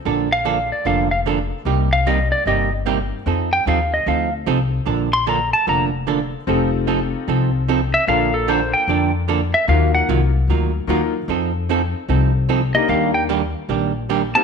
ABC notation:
X:1
M:4/4
L:1/8
Q:"Swing" 1/4=150
K:Bb
V:1 name="Electric slide guitar"
z f2 d f f z2 | z f e d e z3 | z g f e f z3 | z c' b a b z3 |
z6 z =e | f A c g2 z2 =e | f _g z6 | z6 z e |
f g z4 z a |]
V:2 name="Upright piano"
z8 | z8 | z8 | z8 |
[CEFGA]4- [CEFGA] z3 | [B,DFAB]4- [B,DFAB] z3 | [B,EF_GB]3 z3 [B,EFGB] z | z6 z [B,DEGB]- |
[B,DEGB]2 z4 z [B,CEGB] |]
V:3 name="Hollow-body jazz guitar"
[D,F,B,DA] z [D,F,B,DA] z [D,F,B,DA] z [D,F,B,DA] z | [C,G,B,EG] z [C,G,B,EG] z [C,G,B,EG] z [C,G,B,EG] z | [F,CEA] z [F,CEA] z [F,CEA] z [F,CEA] z | [D,F,B,DA] z [D,F,B,DA] z [D,F,B,DA] z [D,F,B,DA] z |
[F,CEA] z [F,CEA] z [F,CEA] z [F,CEA] z | [D,F,B,DA] z [D,F,B,DA] z [D,F,B,DA] z [D,F,B,DA] z | [E,_G,B,F] z [E,G,B,F] z [E,G,B,F] z [E,G,B,F] z | [F,CEA] z [F,CEA] z [F,CEA] z [F,CEA] z |
[E,G,B,DG] z [E,G,B,DG] z [E,G,B,DG] z [E,G,B,DG] z |]
V:4 name="Upright bass" clef=bass
B,,,4 F,,,4 | C,,4 G,,,4 | F,,2 E,,2 D,,2 C,,2 | B,,,4 F,,,4 |
F,,,4 C,,4 | B,,,4 F,,4 | E,,2 C,,2 D,,2 E,,2 | F,,4 C,,4 |
E,,4 B,,,4 |]